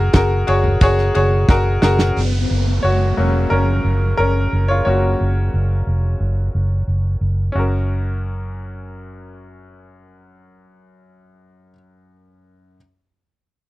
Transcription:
0.00 0.14 F#4 loud
0.00 0.15 G#4 loud
0.00 0.16 A#4 loud
0.13 0.42 F#1 medium
0.13 0.42 F#4 medium
0.13 0.42 G#4 medium
0.13 0.43 A#4 medium
0.13 kick loud
0.13 snare loud
0.13 ride medium
0.47 0.76 F#1 loud
0.47 0.75 F#4 medium
0.47 0.76 G#4 medium
0.47 0.76 C#5 loud
0.47 ride medium
0.64 floor tom medium
0.81 1.09 F#1 medium
0.81 1.09 F#4 loud
0.81 1.10 G#4 loud
0.81 1.10 C#5 loud
0.81 kick loud
0.81 ride medium
0.98 snare soft
1.15 1.44 F#1 loud
1.15 1.43 F#4 medium
1.15 1.43 G#4 medium
1.15 1.44 C#5 medium
1.15 ride medium
1.48 1.77 F#1 medium
1.48 1.77 F#4 medium
1.48 1.77 G#4 medium
1.48 1.77 A#4 medium
1.48 kick loud
1.48 snare medium
1.82 2.10 F#1 loud
1.82 2.10 F#4 medium
1.82 2.10 G#4 medium
1.82 2.11 A#4 medium
1.82 snare medium
1.99 snare medium
2.16 2.44 F#1 medium
2.16 downlifter medium
2.51 2.78 F#1 medium
2.83 3.12 F#1 medium
2.83 3.48 F#4 medium
2.83 3.47 C#5 medium
3.17 3.45 F1 medium
3.17 4.84 F#3 medium
3.17 4.85 A#3 soft
3.17 3.50 C#4 medium
3.50 3.79 F#1 medium
3.50 4.15 C#4 medium
3.50 4.16 A#4 medium
3.85 4.12 F#1 medium
4.17 4.46 F#1 medium
4.17 4.66 C#4 medium
4.17 4.70 A#4 medium
4.53 4.80 F#1 medium
4.68 4.76 F4 medium
4.68 4.73 C#5 medium
4.85 5.14 F#1 medium
4.85 7.52 F#3 soft
4.85 7.52 A#3 soft
4.85 7.51 C#4 soft
4.85 6.85 F#4 medium
4.85 6.84 C#5 medium
5.21 5.48 F#1 medium
5.54 5.81 F#1 medium
5.87 6.15 F1 medium
6.20 6.48 F#1 medium
6.55 6.82 F#1 medium
6.88 7.16 F#1 medium
7.21 7.49 F#1 medium
7.52 11.71 F#1 medium
7.52 11.71 F#2 medium
7.52 11.70 C#4 medium
7.52 11.71 F#4 soft
7.59 11.73 A#4 medium

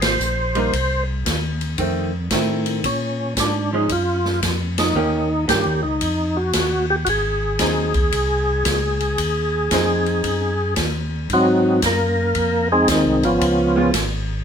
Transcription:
0.00 0.18 G#1 medium
0.00 1.04 C5 medium
0.00 snare medium
0.00 ride medium
0.19 0.71 A#1 medium
0.19 hi-hat pedal medium
0.55 0.71 G3 medium
0.55 0.72 A#3 medium
0.55 0.72 D#4 medium
0.55 ride soft
0.73 1.24 C2 medium
0.73 kick soft
0.73 ride medium
1.26 1.77 D#2 medium
1.26 kick soft
1.26 snare medium
1.26 hi-hat pedal medium
1.26 ride medium
1.61 ride soft
1.78 2.30 F2 medium
1.78 2.10 D#3 soft
1.78 2.11 A3 soft
1.78 2.11 C4 medium
1.78 kick soft
1.78 ride medium
2.31 2.82 A2 medium
2.31 2.85 D#3 medium
2.31 2.85 A3 medium
2.31 2.85 C4 medium
2.31 kick soft
2.31 snare medium
2.31 hi-hat pedal medium
2.31 ride medium
2.66 ride soft
2.84 3.35 A#2 medium
2.84 3.34 C#4 medium
2.84 kick soft
2.84 ride medium
3.37 3.88 G#2 medium
3.37 3.71 D4 medium
3.37 kick soft
3.37 snare medium
3.37 hi-hat pedal medium
3.37 ride medium
3.73 3.88 F3 medium
3.73 3.89 G#3 medium
3.73 3.89 C#4 medium
3.73 3.92 D#4 medium
3.89 4.41 F#2 medium
3.89 4.40 F4 medium
3.89 kick soft
3.89 ride medium
4.25 snare soft
4.42 4.94 F2 medium
4.42 kick soft
4.42 snare medium
4.42 hi-hat pedal medium
4.42 ride medium
4.78 5.45 D#4 medium
4.78 snare medium
4.78 ride medium
4.95 5.47 D#2 medium
4.95 5.27 D#3 medium
4.95 5.27 A#3 medium
4.95 5.28 C#4 medium
4.95 5.28 G4 medium
5.48 5.66 G2 medium
5.48 5.80 D#3 medium
5.48 5.80 A#3 medium
5.48 5.80 C#4 medium
5.48 5.80 G4 medium
5.48 5.81 G4 medium
5.48 kick soft
5.48 snare medium
5.48 hi-hat pedal medium
5.48 ride medium
5.66 5.84 D#2 soft
5.83 6.00 C#2 medium
5.83 6.38 D#4 medium
6.01 6.53 F2 medium
6.01 kick soft
6.01 ride medium
6.37 6.86 F#4 medium
6.53 7.05 D#2 medium
6.53 kick soft
6.53 snare medium
6.53 hi-hat pedal soft
6.53 ride medium
6.90 6.96 G4 medium
7.05 7.58 G#1 medium
7.05 7.08 F#4 medium
7.05 kick soft
7.05 ride medium
7.10 10.74 G#4 medium
7.59 8.11 D#2 medium
7.59 7.91 F#3 medium
7.59 7.92 C4 medium
7.59 7.92 D#4 medium
7.59 kick soft
7.59 snare medium
7.59 hi-hat pedal medium
7.59 ride medium
7.94 kick soft
7.94 ride soft
8.12 8.64 C2 medium
8.12 kick soft
8.12 ride medium
8.65 9.17 C#2 medium
8.65 kick soft
8.65 snare medium
8.65 hi-hat pedal medium
8.65 ride medium
9.00 ride soft
9.18 9.70 D#2 medium
9.18 kick soft
9.18 ride medium
9.71 10.23 F2 medium
9.71 10.53 C4 medium
9.71 10.53 D#4 medium
9.71 kick soft
9.71 snare medium
9.71 hi-hat pedal medium
9.71 ride medium
10.06 ride soft
10.24 10.75 F#2 medium
10.24 kick soft
10.24 ride medium
10.76 11.28 D#2 medium
10.76 kick soft
10.76 snare medium
10.76 hi-hat pedal medium
10.76 ride medium
11.30 11.81 G#2 medium
11.30 11.81 F#3 medium
11.30 11.81 C4 medium
11.30 11.81 D#4 medium
11.30 11.81 F#4 medium
11.30 kick soft
11.30 ride medium
11.82 12.34 F#2 medium
11.82 12.68 A#3 medium
11.82 12.68 A#4 medium
11.82 kick soft
11.82 snare medium
11.82 hi-hat pedal medium
11.82 ride medium
12.35 12.87 F2 medium
12.35 kick soft
12.35 ride medium
12.72 12.89 G#3 medium
12.72 12.89 C4 medium
12.72 12.89 D#4 medium
12.72 12.89 G#4 medium
12.88 13.05 D#2 medium
12.88 13.24 D#4 medium
12.88 kick soft
12.88 snare medium
12.88 hi-hat pedal medium
12.88 ride medium
12.92 13.24 D#3 medium
12.92 13.24 G#3 soft
12.92 13.24 C4 medium
13.05 13.23 C2 medium
13.23 13.40 G#1 medium
13.23 13.91 F3 medium
13.23 13.91 B3 medium
13.23 13.91 C#4 medium
13.23 13.91 F4 medium
13.23 ride soft
13.41 13.92 C#2 medium
13.41 kick soft
13.41 ride medium
13.76 13.92 G#3 medium
13.76 13.93 B3 medium
13.76 13.93 F4 medium
13.94 14.44 G#1 medium
13.94 kick soft
13.94 snare medium
13.94 hi-hat pedal medium
13.94 ride medium

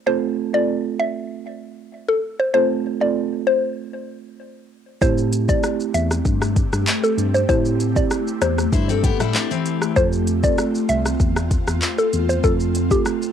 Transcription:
0.06 0.29 A3 loud
0.06 0.29 C4 medium
0.06 0.29 F4 medium
0.06 0.29 A4 loud
0.06 0.18 C5 loud
0.54 0.75 A3 medium
0.54 0.75 C4 medium
0.54 0.75 F4 medium
0.54 0.75 A4 medium
0.54 0.75 D5 medium
0.99 1.21 E5 medium
2.09 2.19 A4 medium
2.40 2.50 C5 medium
2.54 2.76 A3 loud
2.54 2.76 C4 medium
2.54 2.76 F4 medium
2.54 2.77 A4 loud
2.54 2.65 C5 loud
3.01 3.23 A3 medium
3.01 3.23 C4 medium
3.01 3.23 F4 medium
3.01 3.23 A4 medium
3.01 3.23 D5 medium
3.47 3.68 C5 medium
5.01 5.49 A2 loud
5.01 5.24 A3 loud
5.01 13.32 A3 medium
5.01 5.24 C4 medium
5.01 9.92 C4 medium
5.01 5.24 E4 medium
5.01 9.92 G4 medium
5.01 5.24 G4 loud
5.01 5.13 C5 loud
5.01 kick loud
5.01 shaker medium
5.18 shaker medium
5.33 closed hi-hat medium
5.33 shaker medium
5.49 5.70 A3 medium
5.49 5.70 C4 medium
5.49 5.70 E4 medium
5.49 5.70 G4 medium
5.49 5.70 D5 medium
5.49 kick medium
5.49 shaker medium
5.63 cross-stick loud
5.63 shaker medium
5.80 shaker medium
5.94 6.18 E2 loud
5.94 6.15 E5 medium
5.94 closed hi-hat medium
5.94 shaker medium
6.11 cross-stick medium
6.11 shaker medium
6.25 6.62 G2 medium
6.25 kick loud
6.25 shaker medium
6.42 cross-stick loud
6.42 shaker medium
6.56 kick loud
6.56 closed hi-hat medium
6.56 shaker medium
6.73 6.84 G2 medium
6.73 cross-stick medium
6.73 shaker medium
6.87 clap loud
6.87 shaker medium
7.04 7.13 A4 medium
7.04 shaker medium
7.18 7.42 G2 loud
7.18 closed hi-hat medium
7.18 shaker medium
7.34 7.44 C5 medium
7.34 shaker medium
7.49 7.97 A2 loud
7.49 7.71 A3 medium
7.49 7.71 C4 medium
7.49 7.71 E4 medium
7.49 7.71 G4 loud
7.49 7.60 C5 loud
7.49 kick loud
7.49 shaker medium
7.65 shaker medium
7.80 closed hi-hat medium
7.80 shaker medium
7.96 8.17 A3 medium
7.96 8.17 C4 medium
7.96 8.18 E4 medium
7.96 8.18 G4 medium
7.96 8.17 D5 medium
7.96 kick medium
7.96 shaker medium
8.11 cross-stick loud
8.11 shaker medium
8.27 shaker medium
8.42 8.66 E2 medium
8.42 8.63 C5 medium
8.42 cross-stick loud
8.42 closed hi-hat medium
8.42 shaker medium
8.58 cross-stick medium
8.58 shaker medium
8.73 9.09 G2 loud
8.73 8.89 E4 medium
8.73 8.88 C5 medium
8.73 kick loud
8.73 shaker medium
8.89 9.03 C4 medium
8.89 9.03 A4 medium
8.89 shaker medium
9.04 9.20 B3 medium
9.04 9.19 G4 medium
9.04 kick medium
9.04 closed hi-hat medium
9.04 shaker medium
9.20 9.31 A2 loud
9.20 9.34 G3 medium
9.20 9.34 E4 medium
9.20 cross-stick medium
9.20 shaker medium
9.35 9.50 D4 medium
9.35 clap loud
9.35 shaker medium
9.51 9.94 E3 medium
9.51 9.94 C4 medium
9.51 shaker medium
9.66 closed hi-hat medium
9.66 shaker medium
9.82 cross-stick loud
9.82 shaker medium
9.96 10.44 F2 loud
9.96 10.19 A3 loud
9.96 10.19 C4 medium
9.96 13.32 C4 medium
9.96 13.32 F4 loud
9.96 10.19 F4 medium
9.96 10.19 A4 loud
9.96 10.08 C5 loud
9.96 kick loud
9.96 shaker medium
10.13 shaker medium
10.27 closed hi-hat medium
10.27 shaker medium
10.43 10.65 A3 medium
10.43 10.65 C4 medium
10.43 10.65 F4 medium
10.43 10.65 A4 medium
10.43 10.65 D5 medium
10.43 kick medium
10.43 shaker medium
10.58 cross-stick loud
10.58 shaker medium
10.75 shaker medium
10.89 11.13 C2 loud
10.89 11.10 E5 medium
10.89 closed hi-hat medium
10.89 shaker medium
11.06 cross-stick medium
11.06 shaker medium
11.20 11.56 E2 loud
11.20 kick loud
11.20 shaker medium
11.36 cross-stick loud
11.36 shaker medium
11.51 kick medium
11.51 closed hi-hat medium
11.51 shaker medium
11.67 11.79 E2 medium
11.67 cross-stick loud
11.67 shaker medium
11.82 clap loud
11.82 shaker medium
11.98 12.08 A4 medium
11.98 shaker medium
12.13 12.37 E2 loud
12.13 closed hi-hat medium
12.13 shaker medium
12.29 12.39 C5 medium
12.29 shaker medium
12.44 12.91 F2 loud
12.44 12.66 A3 medium
12.44 12.66 C4 medium
12.44 12.66 F4 medium
12.44 12.55 A4 loud
12.44 12.66 A4 loud
12.44 kick loud
12.44 shaker medium
12.60 shaker medium
12.75 closed hi-hat medium
12.75 shaker medium
12.91 13.12 A3 medium
12.91 13.12 C4 medium
12.91 13.12 F4 medium
12.91 13.12 G4 medium
12.91 13.13 A4 medium
12.91 kick medium
12.91 shaker medium
13.06 cross-stick loud
13.06 shaker medium
13.22 shaker medium

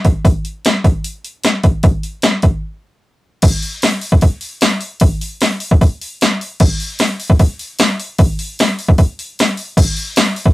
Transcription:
0.05 kick medium
0.05 open hi-hat medium
0.25 kick loud
0.25 open hi-hat medium
0.45 open hi-hat medium
0.65 snare loud
0.65 open hi-hat medium
0.84 kick medium
0.84 open hi-hat medium
1.04 open hi-hat medium
1.25 open hi-hat medium
1.44 snare loud
1.44 open hi-hat medium
1.63 kick medium
1.63 open hi-hat medium
1.83 kick loud
1.83 open hi-hat medium
2.03 open hi-hat medium
2.22 snare loud
2.22 open hi-hat medium
2.42 kick medium
2.42 open hi-hat medium
3.42 kick loud
3.42 open hi-hat medium
3.42 crash loud
3.62 open hi-hat medium
3.82 snare loud
3.82 open hi-hat medium
4.01 open hi-hat medium
4.12 kick medium
4.21 kick medium
4.21 open hi-hat medium
4.41 open hi-hat medium
4.61 snare loud
4.61 open hi-hat medium
4.81 open hi-hat medium
5.00 kick loud
5.00 open hi-hat medium
5.21 open hi-hat medium
5.41 snare loud
5.41 open hi-hat medium
5.60 open hi-hat medium
5.71 kick loud
5.81 kick medium
5.81 open hi-hat medium
6.01 open hi-hat medium
6.21 snare loud
6.21 open hi-hat medium
6.41 open hi-hat medium
6.60 kick loud
6.60 crash loud
6.80 open hi-hat medium
6.99 snare loud
6.99 open hi-hat medium
7.20 open hi-hat medium
7.30 kick loud
7.39 kick loud
7.39 open hi-hat medium
7.59 open hi-hat medium
7.79 snare loud
7.79 open hi-hat medium
8.00 open hi-hat medium
8.18 kick loud
8.18 open hi-hat medium
8.39 open hi-hat medium
8.59 snare loud
8.59 open hi-hat medium
8.79 open hi-hat medium
8.89 kick loud
8.98 kick medium
8.98 open hi-hat medium
9.19 open hi-hat medium
9.39 snare loud
9.39 open hi-hat medium
9.57 open hi-hat medium
9.77 kick loud
9.77 open hi-hat medium
9.77 crash loud
9.97 open hi-hat medium
10.16 snare loud
10.16 open hi-hat medium
10.36 open hi-hat medium
10.46 kick medium

